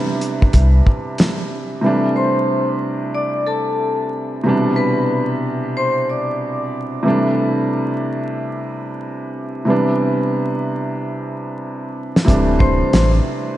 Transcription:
Already playing: upright piano C3 E3 G3 B3 D4
0.21 closed hi-hat
0.42 kick
0.53 sub bass C2, kick, closed hi-hat
0.87 kick
1.18 snare, closed hi-hat
1.81 upright piano C3 E3 G3 A3
1.86 upright piano D4
2.16 vibraphone C5 C6
3.15 vibraphone D5 D6
3.47 vibraphone A4 A5
4.44 upright piano B2 C3 E3 G3
4.49 upright piano D4
4.76 vibraphone B4 B5
5.77 vibraphone C5 C6
6.09 vibraphone D5 D6
7.03 upright piano C3 E3 G3 A3
7.08 upright piano D4
9.65 upright piano C3 E3 G3 B3
9.70 upright piano D4
12.16 snare
12.25 sub bass D1, upright piano C3 E3 G3 A3, kick, closed hi-hat
12.30 upright piano D4
12.59 vibraphone C5 C6, kick
12.93 sub bass A1, snare, closed hi-hat

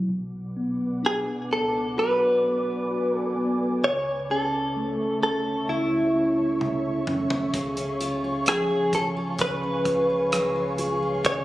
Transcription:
Already playing: tine electric piano B2 F#3 E4
0.09 sub bass B1, tine electric piano B2, ambient pad B4 D5 F#5 D6
0.57 tine electric piano B3
1.03 tine electric piano D4, clean electric guitar G#4
1.50 sub bass C#2, tine electric piano B3, clean electric guitar A4
1.97 sub bass B1, tine electric piano F#4, clean electric guitar B4, ambient pad G#5
2.44 tine electric piano B3
2.91 tine electric piano F#4
3.18 clean electric guitar A4
3.36 tine electric piano B3
3.83 sub bass C#2, tine electric piano C#3, ambient pad A4 C#5 E5 C#6, clean electric guitar C#5
4.30 tine electric piano C#4, clean electric guitar A4
4.76 tine electric piano A3
5.22 sub bass D2, tine electric piano C#4, clean electric guitar A4
5.68 sub bass C#2, tine electric piano C#3, clean electric guitar E4
6.15 tine electric piano C#4
6.61 tine electric piano C#3, high tom
7.07 sub bass B1, tine electric piano C#4, mid tom
7.30 floor tom
7.53 sub bass C#2, steel-string acoustic guitar C#3 G#4, tine electric piano C#3, ambient pad F5 G#5, kick, closed hi-hat
7.77 steel-string acoustic guitar C#4, closed hi-hat
8.01 tine electric piano F4, steel-string acoustic guitar F4, closed hi-hat
8.24 steel-string acoustic guitar G#4
8.46 tine electric piano F3, clean electric guitar G#4, cross-stick, closed hi-hat
8.71 steel-string acoustic guitar F4
8.93 sub bass D2, tine electric piano F4, clean electric guitar A4, kick, closed hi-hat
9.17 steel-string acoustic guitar F4
9.39 sub bass C#2, tine electric piano C#3, steel-string acoustic guitar C#3 G#4, clean electric guitar B4, kick, closed hi-hat
9.63 steel-string acoustic guitar C#4
9.85 tine electric piano F4, steel-string acoustic guitar F4, kick, closed hi-hat
10.10 steel-string acoustic guitar G#4
10.32 tine electric piano C#3, steel-string acoustic guitar G#3, cross-stick, closed hi-hat
10.56 steel-string acoustic guitar F4
10.78 tine electric piano F4, steel-string acoustic guitar G#4, closed hi-hat
11.03 steel-string acoustic guitar F4
11.25 sub bass C#2, tine electric piano C#3, steel-string acoustic guitar C#3 G#4, clean electric guitar C#5, kick, closed hi-hat

